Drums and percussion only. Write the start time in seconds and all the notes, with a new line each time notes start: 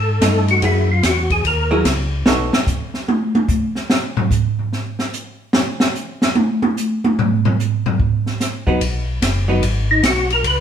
0.21 kick, snare, hi-hat pedal, ride
0.48 ride
0.62 kick, ride
1.03 kick, snare, hi-hat pedal, ride
1.30 kick, ride
1.44 kick, ride
1.85 kick, snare, hi-hat pedal, ride
2.26 snare
2.53 snare
2.67 kick, hi-hat pedal
2.94 snare
3.08 high tom
3.35 high tom
3.48 kick, hi-hat pedal
3.75 snare
3.90 snare
4.17 floor tom
4.31 kick, hi-hat pedal
4.59 floor tom
4.73 snare
4.99 snare
5.13 hi-hat pedal
5.53 snare
5.80 snare
5.95 hi-hat pedal
6.22 snare
6.35 high tom
6.62 high tom
6.77 hi-hat pedal
7.04 high tom
7.19 floor tom
7.45 floor tom
7.60 hi-hat pedal
7.86 floor tom
8.00 kick
8.26 snare
8.40 snare, hi-hat pedal
8.67 kick
8.81 kick, ride
9.22 kick, snare, hi-hat pedal, ride
9.62 kick, ride
10.03 kick, snare, hi-hat pedal, ride
10.30 ride
10.44 kick, ride